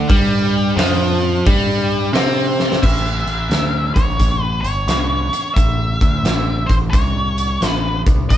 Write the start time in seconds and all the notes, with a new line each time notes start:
0.09 G2 G3, kick, open hi-hat
0.77 F2 F3, snare, open hi-hat
1.46 G2 G3, kick, open hi-hat
2.13 C3 C4, snare, open hi-hat
2.60 snare
2.72 snare
2.83 A1 E5, kick, crash
3.26 A1, closed hi-hat
3.50 D2, snare, closed hi-hat
3.94 A1 C#5, kick, closed hi-hat
4.20 A1, kick, closed hi-hat
4.43 B4
4.61 G1 C#5, closed hi-hat
4.87 C2, snare, closed hi-hat
5.32 muted picked electric bass stroke, closed hi-hat
5.54 A1 E5, kick, closed hi-hat
6.01 D2, kick, closed hi-hat
6.23 A1, snare, closed hi-hat
6.67 A1 C5, kick, closed hi-hat
6.91 C2 C#5, kick, closed hi-hat
7.38 closed hi-hat
7.61 A1, snare, closed hi-hat
7.68 B4
8.06 C2, kick, closed hi-hat
8.29 A1 E5, kick, closed hi-hat